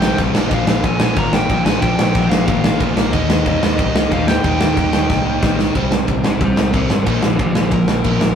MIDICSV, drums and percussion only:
0, 0, Header, 1, 2, 480
1, 0, Start_track
1, 0, Tempo, 327869
1, 748, Time_signature, 4, 2, 24, 8
1, 12224, End_track
2, 0, Start_track
2, 0, Title_t, "Drums"
2, 31, Note_on_c, 9, 38, 113
2, 177, Note_off_c, 9, 38, 0
2, 270, Note_on_c, 9, 36, 113
2, 276, Note_on_c, 9, 49, 69
2, 417, Note_off_c, 9, 36, 0
2, 423, Note_off_c, 9, 49, 0
2, 509, Note_on_c, 9, 38, 112
2, 656, Note_off_c, 9, 38, 0
2, 743, Note_on_c, 9, 49, 64
2, 749, Note_on_c, 9, 36, 113
2, 890, Note_off_c, 9, 49, 0
2, 895, Note_off_c, 9, 36, 0
2, 986, Note_on_c, 9, 38, 124
2, 1132, Note_off_c, 9, 38, 0
2, 1228, Note_on_c, 9, 49, 65
2, 1229, Note_on_c, 9, 36, 118
2, 1375, Note_off_c, 9, 36, 0
2, 1375, Note_off_c, 9, 49, 0
2, 1460, Note_on_c, 9, 38, 126
2, 1606, Note_off_c, 9, 38, 0
2, 1702, Note_on_c, 9, 49, 63
2, 1710, Note_on_c, 9, 36, 116
2, 1848, Note_off_c, 9, 49, 0
2, 1856, Note_off_c, 9, 36, 0
2, 1947, Note_on_c, 9, 38, 112
2, 2093, Note_off_c, 9, 38, 0
2, 2191, Note_on_c, 9, 36, 115
2, 2191, Note_on_c, 9, 49, 63
2, 2337, Note_off_c, 9, 36, 0
2, 2338, Note_off_c, 9, 49, 0
2, 2429, Note_on_c, 9, 38, 117
2, 2576, Note_off_c, 9, 38, 0
2, 2669, Note_on_c, 9, 49, 62
2, 2670, Note_on_c, 9, 36, 113
2, 2816, Note_off_c, 9, 36, 0
2, 2816, Note_off_c, 9, 49, 0
2, 2914, Note_on_c, 9, 38, 127
2, 3060, Note_off_c, 9, 38, 0
2, 3148, Note_on_c, 9, 36, 122
2, 3148, Note_on_c, 9, 49, 68
2, 3294, Note_off_c, 9, 36, 0
2, 3294, Note_off_c, 9, 49, 0
2, 3390, Note_on_c, 9, 38, 121
2, 3536, Note_off_c, 9, 38, 0
2, 3627, Note_on_c, 9, 49, 70
2, 3629, Note_on_c, 9, 36, 122
2, 3774, Note_off_c, 9, 49, 0
2, 3775, Note_off_c, 9, 36, 0
2, 3867, Note_on_c, 9, 38, 121
2, 4014, Note_off_c, 9, 38, 0
2, 4105, Note_on_c, 9, 36, 113
2, 4105, Note_on_c, 9, 49, 71
2, 4251, Note_off_c, 9, 49, 0
2, 4252, Note_off_c, 9, 36, 0
2, 4347, Note_on_c, 9, 38, 114
2, 4494, Note_off_c, 9, 38, 0
2, 4585, Note_on_c, 9, 36, 116
2, 4586, Note_on_c, 9, 49, 70
2, 4732, Note_off_c, 9, 36, 0
2, 4732, Note_off_c, 9, 49, 0
2, 4829, Note_on_c, 9, 38, 127
2, 4975, Note_off_c, 9, 38, 0
2, 5063, Note_on_c, 9, 49, 65
2, 5066, Note_on_c, 9, 36, 115
2, 5209, Note_off_c, 9, 49, 0
2, 5212, Note_off_c, 9, 36, 0
2, 5313, Note_on_c, 9, 38, 119
2, 5459, Note_off_c, 9, 38, 0
2, 5547, Note_on_c, 9, 36, 120
2, 5549, Note_on_c, 9, 49, 64
2, 5693, Note_off_c, 9, 36, 0
2, 5696, Note_off_c, 9, 49, 0
2, 5791, Note_on_c, 9, 38, 126
2, 5938, Note_off_c, 9, 38, 0
2, 6026, Note_on_c, 9, 36, 113
2, 6027, Note_on_c, 9, 49, 66
2, 6172, Note_off_c, 9, 36, 0
2, 6173, Note_off_c, 9, 49, 0
2, 6267, Note_on_c, 9, 38, 123
2, 6413, Note_off_c, 9, 38, 0
2, 6503, Note_on_c, 9, 49, 62
2, 6505, Note_on_c, 9, 36, 118
2, 6649, Note_off_c, 9, 49, 0
2, 6652, Note_off_c, 9, 36, 0
2, 6744, Note_on_c, 9, 38, 125
2, 6891, Note_off_c, 9, 38, 0
2, 6984, Note_on_c, 9, 36, 113
2, 6986, Note_on_c, 9, 49, 69
2, 7130, Note_off_c, 9, 36, 0
2, 7133, Note_off_c, 9, 49, 0
2, 7219, Note_on_c, 9, 38, 117
2, 7366, Note_off_c, 9, 38, 0
2, 7464, Note_on_c, 9, 36, 123
2, 7466, Note_on_c, 9, 38, 71
2, 7610, Note_off_c, 9, 36, 0
2, 7612, Note_off_c, 9, 38, 0
2, 7945, Note_on_c, 9, 36, 119
2, 7947, Note_on_c, 9, 38, 95
2, 8091, Note_off_c, 9, 36, 0
2, 8094, Note_off_c, 9, 38, 0
2, 8183, Note_on_c, 9, 38, 99
2, 8330, Note_off_c, 9, 38, 0
2, 8420, Note_on_c, 9, 51, 70
2, 8422, Note_on_c, 9, 36, 109
2, 8566, Note_off_c, 9, 51, 0
2, 8569, Note_off_c, 9, 36, 0
2, 8665, Note_on_c, 9, 38, 121
2, 8812, Note_off_c, 9, 38, 0
2, 8903, Note_on_c, 9, 36, 105
2, 8904, Note_on_c, 9, 51, 75
2, 9049, Note_off_c, 9, 36, 0
2, 9050, Note_off_c, 9, 51, 0
2, 9142, Note_on_c, 9, 38, 112
2, 9288, Note_off_c, 9, 38, 0
2, 9378, Note_on_c, 9, 51, 66
2, 9382, Note_on_c, 9, 36, 118
2, 9524, Note_off_c, 9, 51, 0
2, 9528, Note_off_c, 9, 36, 0
2, 9622, Note_on_c, 9, 38, 111
2, 9769, Note_off_c, 9, 38, 0
2, 9864, Note_on_c, 9, 36, 112
2, 9864, Note_on_c, 9, 51, 74
2, 10010, Note_off_c, 9, 36, 0
2, 10010, Note_off_c, 9, 51, 0
2, 10101, Note_on_c, 9, 38, 106
2, 10248, Note_off_c, 9, 38, 0
2, 10345, Note_on_c, 9, 36, 116
2, 10345, Note_on_c, 9, 51, 72
2, 10491, Note_off_c, 9, 36, 0
2, 10492, Note_off_c, 9, 51, 0
2, 10579, Note_on_c, 9, 38, 119
2, 10725, Note_off_c, 9, 38, 0
2, 10822, Note_on_c, 9, 51, 74
2, 10824, Note_on_c, 9, 36, 116
2, 10968, Note_off_c, 9, 51, 0
2, 10970, Note_off_c, 9, 36, 0
2, 11059, Note_on_c, 9, 38, 111
2, 11205, Note_off_c, 9, 38, 0
2, 11291, Note_on_c, 9, 51, 81
2, 11301, Note_on_c, 9, 36, 108
2, 11438, Note_off_c, 9, 51, 0
2, 11447, Note_off_c, 9, 36, 0
2, 11535, Note_on_c, 9, 38, 110
2, 11681, Note_off_c, 9, 38, 0
2, 11774, Note_on_c, 9, 51, 76
2, 11782, Note_on_c, 9, 36, 111
2, 11920, Note_off_c, 9, 51, 0
2, 11929, Note_off_c, 9, 36, 0
2, 12021, Note_on_c, 9, 38, 107
2, 12167, Note_off_c, 9, 38, 0
2, 12224, End_track
0, 0, End_of_file